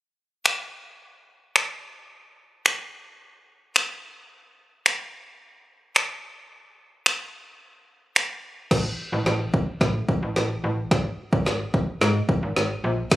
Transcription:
0, 0, Header, 1, 3, 480
1, 0, Start_track
1, 0, Tempo, 550459
1, 1836, Time_signature, 4, 2, 24, 8
1, 11476, End_track
2, 0, Start_track
2, 0, Title_t, "FM bass"
2, 0, Program_c, 0, 39
2, 7596, Note_on_c, 0, 33, 110
2, 7768, Note_off_c, 0, 33, 0
2, 7956, Note_on_c, 0, 33, 94
2, 8042, Note_off_c, 0, 33, 0
2, 8076, Note_on_c, 0, 33, 96
2, 8248, Note_off_c, 0, 33, 0
2, 8554, Note_on_c, 0, 45, 95
2, 8726, Note_off_c, 0, 45, 0
2, 8916, Note_on_c, 0, 33, 92
2, 9002, Note_off_c, 0, 33, 0
2, 9036, Note_on_c, 0, 33, 90
2, 9208, Note_off_c, 0, 33, 0
2, 9276, Note_on_c, 0, 33, 90
2, 9448, Note_off_c, 0, 33, 0
2, 9516, Note_on_c, 0, 32, 102
2, 9688, Note_off_c, 0, 32, 0
2, 9876, Note_on_c, 0, 32, 92
2, 9962, Note_off_c, 0, 32, 0
2, 9995, Note_on_c, 0, 32, 90
2, 10167, Note_off_c, 0, 32, 0
2, 10475, Note_on_c, 0, 44, 104
2, 10647, Note_off_c, 0, 44, 0
2, 10836, Note_on_c, 0, 32, 93
2, 10922, Note_off_c, 0, 32, 0
2, 10955, Note_on_c, 0, 32, 87
2, 11127, Note_off_c, 0, 32, 0
2, 11196, Note_on_c, 0, 34, 94
2, 11368, Note_off_c, 0, 34, 0
2, 11436, Note_on_c, 0, 33, 106
2, 11476, Note_off_c, 0, 33, 0
2, 11476, End_track
3, 0, Start_track
3, 0, Title_t, "Drums"
3, 397, Note_on_c, 9, 26, 104
3, 485, Note_off_c, 9, 26, 0
3, 1358, Note_on_c, 9, 26, 112
3, 1445, Note_off_c, 9, 26, 0
3, 2318, Note_on_c, 9, 26, 113
3, 2405, Note_off_c, 9, 26, 0
3, 3278, Note_on_c, 9, 26, 110
3, 3365, Note_off_c, 9, 26, 0
3, 4238, Note_on_c, 9, 26, 110
3, 4325, Note_off_c, 9, 26, 0
3, 5198, Note_on_c, 9, 26, 116
3, 5285, Note_off_c, 9, 26, 0
3, 6157, Note_on_c, 9, 26, 109
3, 6244, Note_off_c, 9, 26, 0
3, 7117, Note_on_c, 9, 26, 109
3, 7204, Note_off_c, 9, 26, 0
3, 7596, Note_on_c, 9, 36, 98
3, 7596, Note_on_c, 9, 38, 49
3, 7596, Note_on_c, 9, 49, 89
3, 7683, Note_off_c, 9, 36, 0
3, 7683, Note_off_c, 9, 38, 0
3, 7683, Note_off_c, 9, 49, 0
3, 8076, Note_on_c, 9, 38, 50
3, 8163, Note_off_c, 9, 38, 0
3, 8316, Note_on_c, 9, 36, 89
3, 8403, Note_off_c, 9, 36, 0
3, 8554, Note_on_c, 9, 36, 96
3, 8556, Note_on_c, 9, 38, 58
3, 8641, Note_off_c, 9, 36, 0
3, 8643, Note_off_c, 9, 38, 0
3, 8795, Note_on_c, 9, 36, 94
3, 8882, Note_off_c, 9, 36, 0
3, 9036, Note_on_c, 9, 38, 58
3, 9123, Note_off_c, 9, 38, 0
3, 9516, Note_on_c, 9, 36, 98
3, 9516, Note_on_c, 9, 38, 58
3, 9603, Note_off_c, 9, 36, 0
3, 9603, Note_off_c, 9, 38, 0
3, 9877, Note_on_c, 9, 36, 100
3, 9964, Note_off_c, 9, 36, 0
3, 9997, Note_on_c, 9, 38, 60
3, 10084, Note_off_c, 9, 38, 0
3, 10236, Note_on_c, 9, 36, 92
3, 10324, Note_off_c, 9, 36, 0
3, 10477, Note_on_c, 9, 38, 63
3, 10564, Note_off_c, 9, 38, 0
3, 10715, Note_on_c, 9, 36, 100
3, 10802, Note_off_c, 9, 36, 0
3, 10956, Note_on_c, 9, 38, 67
3, 11043, Note_off_c, 9, 38, 0
3, 11436, Note_on_c, 9, 36, 99
3, 11436, Note_on_c, 9, 38, 67
3, 11436, Note_on_c, 9, 42, 92
3, 11476, Note_off_c, 9, 36, 0
3, 11476, Note_off_c, 9, 38, 0
3, 11476, Note_off_c, 9, 42, 0
3, 11476, End_track
0, 0, End_of_file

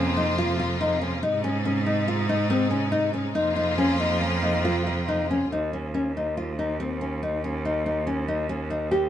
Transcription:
0, 0, Header, 1, 4, 480
1, 0, Start_track
1, 0, Tempo, 426743
1, 1382, Time_signature, 5, 2, 24, 8
1, 10227, End_track
2, 0, Start_track
2, 0, Title_t, "Nylon-string guitar"
2, 0, Program_c, 0, 24
2, 0, Note_on_c, 0, 61, 75
2, 142, Note_off_c, 0, 61, 0
2, 191, Note_on_c, 0, 63, 65
2, 377, Note_off_c, 0, 63, 0
2, 431, Note_on_c, 0, 65, 77
2, 616, Note_off_c, 0, 65, 0
2, 669, Note_on_c, 0, 65, 68
2, 854, Note_off_c, 0, 65, 0
2, 907, Note_on_c, 0, 63, 76
2, 1092, Note_off_c, 0, 63, 0
2, 1142, Note_on_c, 0, 61, 69
2, 1328, Note_off_c, 0, 61, 0
2, 1381, Note_on_c, 0, 63, 80
2, 1567, Note_off_c, 0, 63, 0
2, 1619, Note_on_c, 0, 61, 74
2, 1805, Note_off_c, 0, 61, 0
2, 1859, Note_on_c, 0, 61, 79
2, 2045, Note_off_c, 0, 61, 0
2, 2096, Note_on_c, 0, 63, 68
2, 2283, Note_off_c, 0, 63, 0
2, 2339, Note_on_c, 0, 65, 75
2, 2524, Note_off_c, 0, 65, 0
2, 2578, Note_on_c, 0, 63, 69
2, 2763, Note_off_c, 0, 63, 0
2, 2812, Note_on_c, 0, 60, 85
2, 2999, Note_off_c, 0, 60, 0
2, 3043, Note_on_c, 0, 61, 64
2, 3234, Note_off_c, 0, 61, 0
2, 3282, Note_on_c, 0, 63, 80
2, 3473, Note_off_c, 0, 63, 0
2, 3528, Note_on_c, 0, 61, 64
2, 3716, Note_off_c, 0, 61, 0
2, 3768, Note_on_c, 0, 63, 80
2, 3956, Note_off_c, 0, 63, 0
2, 4006, Note_on_c, 0, 63, 71
2, 4195, Note_off_c, 0, 63, 0
2, 4252, Note_on_c, 0, 61, 76
2, 4440, Note_off_c, 0, 61, 0
2, 4495, Note_on_c, 0, 63, 63
2, 4682, Note_off_c, 0, 63, 0
2, 4737, Note_on_c, 0, 61, 74
2, 4924, Note_off_c, 0, 61, 0
2, 4981, Note_on_c, 0, 63, 64
2, 5169, Note_off_c, 0, 63, 0
2, 5228, Note_on_c, 0, 65, 77
2, 5416, Note_off_c, 0, 65, 0
2, 5474, Note_on_c, 0, 65, 65
2, 5663, Note_off_c, 0, 65, 0
2, 5719, Note_on_c, 0, 63, 71
2, 5908, Note_off_c, 0, 63, 0
2, 5968, Note_on_c, 0, 61, 62
2, 6154, Note_off_c, 0, 61, 0
2, 6213, Note_on_c, 0, 63, 65
2, 6396, Note_off_c, 0, 63, 0
2, 6448, Note_on_c, 0, 61, 58
2, 6634, Note_off_c, 0, 61, 0
2, 6685, Note_on_c, 0, 61, 66
2, 6872, Note_off_c, 0, 61, 0
2, 6938, Note_on_c, 0, 63, 59
2, 7120, Note_off_c, 0, 63, 0
2, 7169, Note_on_c, 0, 65, 61
2, 7355, Note_off_c, 0, 65, 0
2, 7410, Note_on_c, 0, 63, 59
2, 7596, Note_off_c, 0, 63, 0
2, 7647, Note_on_c, 0, 60, 65
2, 7835, Note_off_c, 0, 60, 0
2, 7886, Note_on_c, 0, 61, 62
2, 8074, Note_off_c, 0, 61, 0
2, 8129, Note_on_c, 0, 63, 68
2, 8316, Note_off_c, 0, 63, 0
2, 8370, Note_on_c, 0, 61, 60
2, 8556, Note_off_c, 0, 61, 0
2, 8607, Note_on_c, 0, 63, 66
2, 8794, Note_off_c, 0, 63, 0
2, 8841, Note_on_c, 0, 63, 63
2, 9029, Note_off_c, 0, 63, 0
2, 9075, Note_on_c, 0, 61, 65
2, 9264, Note_off_c, 0, 61, 0
2, 9317, Note_on_c, 0, 63, 62
2, 9504, Note_off_c, 0, 63, 0
2, 9552, Note_on_c, 0, 61, 71
2, 9740, Note_off_c, 0, 61, 0
2, 9789, Note_on_c, 0, 63, 55
2, 9978, Note_off_c, 0, 63, 0
2, 10027, Note_on_c, 0, 67, 75
2, 10216, Note_off_c, 0, 67, 0
2, 10227, End_track
3, 0, Start_track
3, 0, Title_t, "String section"
3, 0, Program_c, 1, 48
3, 0, Note_on_c, 1, 48, 61
3, 0, Note_on_c, 1, 58, 57
3, 0, Note_on_c, 1, 65, 70
3, 1352, Note_off_c, 1, 65, 0
3, 1353, Note_off_c, 1, 58, 0
3, 1376, Note_on_c, 1, 63, 74
3, 1381, Note_on_c, 1, 56, 65
3, 3746, Note_off_c, 1, 63, 0
3, 3748, Note_off_c, 1, 56, 0
3, 3764, Note_on_c, 1, 65, 82
3, 3769, Note_on_c, 1, 58, 64
3, 6156, Note_off_c, 1, 48, 0
3, 6174, Note_off_c, 1, 65, 0
3, 6176, Note_off_c, 1, 58, 0
3, 10227, End_track
4, 0, Start_track
4, 0, Title_t, "Cello"
4, 0, Program_c, 2, 42
4, 0, Note_on_c, 2, 41, 77
4, 1382, Note_on_c, 2, 44, 78
4, 1399, Note_off_c, 2, 41, 0
4, 3773, Note_on_c, 2, 41, 81
4, 3790, Note_off_c, 2, 44, 0
4, 6157, Note_off_c, 2, 41, 0
4, 6198, Note_on_c, 2, 39, 68
4, 10227, Note_off_c, 2, 39, 0
4, 10227, End_track
0, 0, End_of_file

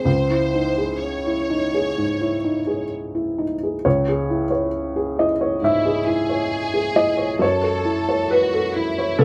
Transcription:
0, 0, Header, 1, 3, 480
1, 0, Start_track
1, 0, Key_signature, 4, "minor"
1, 0, Tempo, 949367
1, 26, Time_signature, 4, 2, 24, 8
1, 1946, Tempo, 890208
1, 4856, End_track
2, 0, Start_track
2, 0, Title_t, "Felt piano"
2, 0, Program_c, 0, 0
2, 0, Control_c, 0, 64, 127
2, 25, Note_on_c, 0, 37, 42
2, 35, Control_c, 0, 64, 0
2, 140, Control_c, 0, 64, 127
2, 152, Note_on_c, 0, 64, 32
2, 274, Note_on_c, 0, 63, 33
2, 342, Note_off_c, 0, 64, 0
2, 394, Note_on_c, 0, 68, 33
2, 463, Note_off_c, 0, 63, 0
2, 640, Note_on_c, 0, 64, 29
2, 759, Note_on_c, 0, 63, 34
2, 778, Note_off_c, 0, 68, 0
2, 829, Note_off_c, 0, 64, 0
2, 881, Note_on_c, 0, 68, 37
2, 949, Note_off_c, 0, 63, 0
2, 972, Note_off_c, 0, 37, 0
2, 1000, Note_on_c, 0, 44, 32
2, 1070, Note_off_c, 0, 68, 0
2, 1119, Note_on_c, 0, 64, 33
2, 1188, Note_off_c, 0, 44, 0
2, 1235, Note_on_c, 0, 63, 33
2, 1307, Note_off_c, 0, 64, 0
2, 1350, Note_on_c, 0, 68, 30
2, 1424, Note_off_c, 0, 63, 0
2, 1592, Note_on_c, 0, 64, 30
2, 1711, Note_on_c, 0, 63, 30
2, 1734, Note_off_c, 0, 68, 0
2, 1783, Note_off_c, 0, 64, 0
2, 1837, Note_on_c, 0, 68, 33
2, 1900, Note_off_c, 0, 63, 0
2, 1946, Note_on_c, 0, 73, 71
2, 1949, Note_on_c, 0, 37, 50
2, 1950, Note_off_c, 0, 68, 0
2, 1956, Control_c, 0, 64, 0
2, 2042, Control_c, 0, 64, 127
2, 2074, Note_on_c, 0, 68, 39
2, 2190, Note_on_c, 0, 64, 43
2, 2266, Note_off_c, 0, 68, 0
2, 2292, Note_off_c, 0, 73, 0
2, 2300, Note_on_c, 0, 73, 42
2, 2383, Note_off_c, 0, 64, 0
2, 2545, Note_on_c, 0, 68, 39
2, 2668, Note_on_c, 0, 64, 45
2, 2670, Note_on_c, 0, 75, 67
2, 2690, Note_off_c, 0, 73, 0
2, 2741, Note_off_c, 0, 68, 0
2, 2788, Note_on_c, 0, 73, 46
2, 2863, Note_off_c, 0, 64, 0
2, 2893, Note_off_c, 0, 37, 0
2, 2895, Note_off_c, 0, 75, 0
2, 2901, Note_on_c, 0, 44, 40
2, 2913, Note_on_c, 0, 76, 68
2, 2984, Note_off_c, 0, 73, 0
2, 3027, Note_on_c, 0, 68, 46
2, 3100, Note_off_c, 0, 44, 0
2, 3141, Note_on_c, 0, 64, 46
2, 3223, Note_off_c, 0, 68, 0
2, 3265, Note_on_c, 0, 73, 42
2, 3340, Note_off_c, 0, 64, 0
2, 3503, Note_on_c, 0, 68, 44
2, 3612, Note_off_c, 0, 76, 0
2, 3624, Note_on_c, 0, 64, 42
2, 3624, Note_on_c, 0, 75, 77
2, 3652, Note_off_c, 0, 73, 0
2, 3700, Note_off_c, 0, 68, 0
2, 3738, Note_on_c, 0, 73, 45
2, 3821, Note_off_c, 0, 64, 0
2, 3852, Note_off_c, 0, 75, 0
2, 3855, Note_on_c, 0, 42, 54
2, 3862, Note_off_c, 0, 73, 0
2, 3870, Note_on_c, 0, 73, 78
2, 3882, Control_c, 0, 64, 0
2, 3965, Control_c, 0, 64, 127
2, 3979, Note_on_c, 0, 69, 45
2, 4103, Note_on_c, 0, 64, 44
2, 4178, Note_off_c, 0, 69, 0
2, 4223, Note_off_c, 0, 73, 0
2, 4231, Note_on_c, 0, 73, 52
2, 4300, Note_off_c, 0, 64, 0
2, 4350, Note_on_c, 0, 71, 73
2, 4472, Note_on_c, 0, 69, 45
2, 4594, Note_on_c, 0, 64, 50
2, 4612, Note_off_c, 0, 73, 0
2, 4661, Note_off_c, 0, 69, 0
2, 4715, Note_on_c, 0, 73, 52
2, 4781, Note_off_c, 0, 64, 0
2, 4795, Note_off_c, 0, 42, 0
2, 4803, Note_off_c, 0, 71, 0
2, 4824, Note_on_c, 0, 69, 78
2, 4826, Note_on_c, 0, 49, 47
2, 4856, Note_off_c, 0, 49, 0
2, 4856, Note_off_c, 0, 69, 0
2, 4856, Note_off_c, 0, 73, 0
2, 4856, End_track
3, 0, Start_track
3, 0, Title_t, "Violin section"
3, 0, Program_c, 1, 48
3, 21, Note_on_c, 1, 72, 62
3, 495, Note_off_c, 1, 72, 0
3, 501, Note_on_c, 1, 73, 50
3, 1468, Note_off_c, 1, 73, 0
3, 2914, Note_on_c, 1, 64, 56
3, 3138, Note_off_c, 1, 64, 0
3, 3150, Note_on_c, 1, 68, 72
3, 3866, Note_on_c, 1, 69, 68
3, 3871, Note_off_c, 1, 68, 0
3, 4339, Note_off_c, 1, 69, 0
3, 4354, Note_on_c, 1, 66, 68
3, 4590, Note_off_c, 1, 66, 0
3, 4590, Note_on_c, 1, 64, 65
3, 4826, Note_off_c, 1, 64, 0
3, 4832, Note_on_c, 1, 61, 68
3, 4856, Note_off_c, 1, 61, 0
3, 4856, End_track
0, 0, End_of_file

